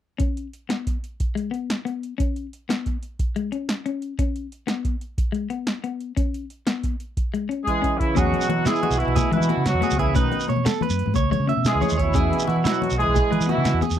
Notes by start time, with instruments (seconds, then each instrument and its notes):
0.18 clean electric guitar C#4, kick, closed hi-hat
0.37 closed hi-hat
0.53 closed hi-hat
0.69 clean electric guitar B3, snare, closed hi-hat
0.87 kick, closed hi-hat
1.04 closed hi-hat
1.20 kick, closed hi-hat
1.35 clean electric guitar G#3, closed hi-hat
1.51 clean electric guitar B3, closed hi-hat
1.70 snare, closed hi-hat
1.85 clean electric guitar B3, closed hi-hat
2.03 closed hi-hat
2.18 clean electric guitar C#4, kick, closed hi-hat
2.36 closed hi-hat
2.53 closed hi-hat
2.69 clean electric guitar B3, snare, closed hi-hat
2.86 kick, closed hi-hat
3.03 closed hi-hat
3.19 kick, closed hi-hat
3.36 clean electric guitar G#3, closed hi-hat
3.52 clean electric guitar C#4, closed hi-hat
3.69 snare, closed hi-hat
3.86 clean electric guitar C#4, closed hi-hat
4.02 closed hi-hat
4.19 clean electric guitar C#4, kick, closed hi-hat
4.36 closed hi-hat
4.52 closed hi-hat
4.67 clean electric guitar B3, snare, closed hi-hat
4.85 kick, closed hi-hat
5.01 closed hi-hat
5.18 kick, closed hi-hat
5.32 clean electric guitar G#3, closed hi-hat
5.50 clean electric guitar B3, closed hi-hat
5.67 snare, closed hi-hat
5.84 clean electric guitar B3, closed hi-hat
6.00 closed hi-hat
6.17 clean electric guitar C#4, kick, closed hi-hat
6.34 closed hi-hat
6.50 closed hi-hat
6.67 clean electric guitar B3, snare, closed hi-hat
6.83 kick, closed hi-hat
7.00 closed hi-hat
7.17 kick, closed hi-hat
7.34 clean electric guitar G#3, closed hi-hat
7.49 clean electric guitar C#4, closed hi-hat
7.65 trombone E3, horn section G#3 G#4, kick, closed hi-hat
7.82 clean electric guitar C#4, kick, closed hi-hat
7.98 trombone C#3, horn section E3 E4, kick, closed hi-hat
8.15 fingered electric bass E2, trombone B2, horn section F#3 F#4, clean electric guitar C#4 G#4, kick, closed hi-hat, high conga, shekere
8.33 closed hi-hat, low conga
8.41 shekere
8.49 fingered electric bass E3, clean electric guitar F#4, closed hi-hat, high conga
8.59 low conga
8.65 trombone E3, horn section G#3 G#4, clean electric guitar B3 E4, snare, closed hi-hat, shekere
8.75 shekere
8.83 clean electric guitar F#4, closed hi-hat, high conga, low conga
8.90 fingered electric bass B1, shekere
8.97 trombone B2, horn section E3 E4, closed hi-hat
9.07 fingered electric bass B1, low conga
9.16 clean electric guitar G#4, kick, closed hi-hat, high conga, shekere
9.26 low conga
9.32 trombone B2, fingered electric bass E3, horn section E3 E4, clean electric guitar G#3 B4, closed hi-hat, low conga
9.40 fingered electric bass E3, shekere
9.49 clean electric guitar B3 F#4, closed hi-hat, high conga
9.57 fingered electric bass C#3, low conga
9.66 trombone B2, horn section F#3 F#4, snare, closed hi-hat, low conga, shekere
9.74 fingered electric bass E2
9.81 clean electric guitar B3 G#4, closed hi-hat, high conga, low conga, shekere
9.90 fingered electric bass C#2, shekere
9.98 trombone C#3, horn section E3 E4, clean electric guitar G#4, kick, closed hi-hat
10.07 low conga
10.15 fingered electric bass B1, trombone B2, horn section D#3 D#4, clean electric guitar C#4 B4, kick, closed hi-hat, high conga, shekere
10.32 closed hi-hat, low conga
10.40 shekere
10.48 fingered electric bass B2, clean electric guitar C#5, snare, closed hi-hat, high conga
10.56 low conga
10.65 clean electric guitar B3 A4, snare, closed hi-hat, shekere
10.74 shekere
10.81 clean electric guitar B4, closed hi-hat, high conga, low conga
10.90 fingered electric bass F#2, low conga, shekere
10.99 closed hi-hat
11.06 fingered electric bass G#2, low conga
11.14 fingered electric bass C#2, clean electric guitar C#5, kick, closed hi-hat, high conga, shekere
11.23 low conga
11.31 fingered electric bass C#3, clean electric guitar G#3 C#5, closed hi-hat, low conga
11.40 fingered electric bass C#3
11.47 clean electric guitar C#4 E5, closed hi-hat, high conga
11.57 fingered electric bass B2, low conga
11.65 horn section G#3 G#4, snare, closed hi-hat, low conga, shekere
11.69 trombone E3
11.75 fingered electric bass C#2
11.81 clean electric guitar C#5, muted clean electric guitar stroke, closed hi-hat, high conga, low conga, shekere
11.89 fingered electric bass D#2, shekere
11.98 trombone B2, horn section E3 E4, clean electric guitar C#5, kick, closed hi-hat
12.07 low conga
12.14 fingered electric bass E2, clean electric guitar C#4 G#4, kick, closed hi-hat, high conga, shekere
12.31 closed hi-hat, low conga
12.39 shekere
12.47 fingered electric bass E3, clean electric guitar F#4, closed hi-hat, high conga
12.56 low conga
12.64 horn section F#3 F#4, clean electric guitar B3 E4, snare, closed hi-hat, shekere
12.68 trombone B2
12.73 shekere
12.82 closed hi-hat, high conga, low conga
12.90 fingered electric bass B1, shekere
12.98 trombone E3, horn section G#3 G#4, closed hi-hat
13.06 fingered electric bass B1, low conga
13.14 clean electric guitar G#4, kick, closed hi-hat, high conga, shekere
13.31 fingered electric bass E3, clean electric guitar G#3 B4, closed hi-hat
13.40 fingered electric bass E3, shekere
13.46 horn section E3 E4, clean electric guitar B3 F#4, closed hi-hat, high conga
13.52 trombone B2
13.57 fingered electric bass C#3, low conga
13.65 snare, closed hi-hat, shekere
13.74 fingered electric bass E2
13.81 clean electric guitar B3 G#4, closed hi-hat, high conga, low conga, shekere
13.90 fingered electric bass E2, shekere